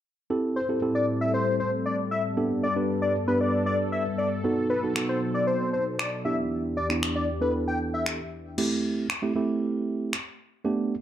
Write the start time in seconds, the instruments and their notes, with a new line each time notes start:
0.30 analog synth pad A2 G3 C4 A4, tine electric piano C4 E4 G4 A4
0.56 analog synth lead C5
0.69 tine electric piano C4 E4 G4 A4
0.82 tine electric piano C4 E4 G4 A4
0.95 analog synth lead D5
1.21 analog synth lead E5
1.34 analog synth lead C5
1.60 analog synth lead C5
1.86 analog synth lead D5
2.11 analog synth lead E5
2.37 analog synth pad G2 B3 A4, tine electric piano B3 D4 G4 A4
2.63 analog synth lead D5
2.76 tine electric piano B3 D4 G4 B4
3.02 analog synth lead D5
3.28 tine electric piano B3 D4 G4 B4, analog synth lead B4
3.41 analog synth lead D5
3.66 analog synth lead D5
3.92 analog synth lead E5
4.18 analog synth lead D5
4.44 analog synth pad B2 F#3 D#4, tine electric piano B3 D#4 F#4 A4
4.70 analog synth lead B4
4.83 tine electric piano B3 D#4 F#4 A4
4.96 tine electric piano B3 D#4 F#4 A4, finger snap
5.09 analog synth lead C5
5.34 analog synth lead D5
5.47 analog synth lead C5
5.73 analog synth lead C5
5.99 analog synth lead D5, finger snap
6.25 analog synth pad E2 E3 D4 G4, tine electric piano B3 D4 E4 G4, analog synth lead E5
6.77 analog synth lead D5
6.89 tine electric piano B3 D4 E4 G4, finger snap
7.03 finger snap
7.16 analog synth lead D5
7.41 tine electric piano B3 D4 E4 A4, analog synth lead B4
7.68 analog synth lead G5
7.94 analog synth lead E5
8.06 finger snap
8.58 tine electric piano A3 C4 E4 G4, crash
9.10 finger snap
9.22 tine electric piano A3 C4 E4 G4
9.36 tine electric piano A3 C4 E4 G4
10.13 finger snap
10.65 tine electric piano A3 B3 D4 G4